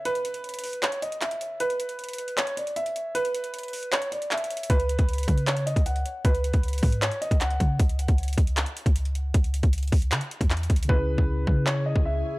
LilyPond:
<<
  \new Staff \with { instrumentName = "Grand piano" } { \time 4/4 \key cis \minor \tempo 4 = 155 b'2 cis''8 dis''8 e''4 | b'2 cis''8 d''8 e''4 | b'2 cis''8 d''8 e''4 | b'2 cis''8 dis''8 fis''4 |
b'2 cis''8 dis''8 fis''4 | r1 | r1 | b'2 cis''8 dis''8 e''4 | }
  \new Staff \with { instrumentName = "Ambient pad" } { \time 4/4 \key cis \minor r1 | r1 | r1 | r1 |
r1 | r1 | r1 | <e cis' e' gis'>1 | }
  \new Staff \with { instrumentName = "Tine electric piano" } { \time 4/4 \key cis \minor r1 | r1 | r1 | r1 |
r1 | r1 | r1 | <cis cis' e' gis'>1 | }
  \new Staff \with { instrumentName = "808-style bass" } { \clef bass \time 4/4 \key cis \minor r1 | r1 | r1 | cis,8. cis,8. cis4~ cis16 cis,8. r8 |
cis,8. cis,8. gis,8. r8 cis,8. cis8 | cis,8. cis,8. cis,8. r8 cis,4~ cis,16 | cis,8. cis,8. cis,8 cis16 r8 e,8. cis,8 | cis,8. cis,8. cis4~ cis16 cis,8. r8 | }
  \new DrumStaff \with { instrumentName = "Drums" } \drummode { \time 4/4 hh16 hh16 hh16 hh16 hh32 hh32 hh32 hh32 hho16 hh16 <hc hh>16 hh16 hh16 hh16 <hc hh>16 hh16 hh8 | hh16 hh16 hh16 hh16 hh32 hh32 hh32 hh32 hh16 hh16 <hc hh>16 hh16 hh16 hh16 hh16 hh16 hh8 | hh16 hh16 hh16 hh16 hh32 hh32 hh32 hh32 hho16 hh16 <hc hh>16 hh16 hh16 hh16 \tuplet 3/2 { <hc hh>16 hh16 hh16 hh16 hh16 hh16 } | <hh bd>16 hh16 hh16 <hh bd>16 hh32 hh32 hh32 hh32 <hh bd>16 hh16 <hc hh>16 hh16 hh16 <hh bd>16 hh16 hh16 hh8 |
<hh bd>16 hh16 hh16 <hh bd>16 hh32 hh32 hh32 hh32 <hho bd>16 hh16 <hc hh>16 hh16 hh16 <hh bd>16 <hc hh>16 hh16 <hh bd>8 | <hh bd>16 hh16 hh16 <hh bd>16 hh32 hh32 hh32 hh32 <hh bd>16 hh16 <hc hh>16 hh16 hh16 <hh bd>16 hh16 hh16 hh8 | <hh bd>16 hh16 hh16 <hh bd>16 hh32 hh32 hh32 hh32 <hho bd>16 hh16 <hc hh>16 hh16 hh16 <hh bd>16 \tuplet 3/2 { <hc hh>16 hh16 hh16 <hh bd>16 hh16 hh16 } | bd8. bd16 r8 bd8 hc8. bd16 r4 | }
>>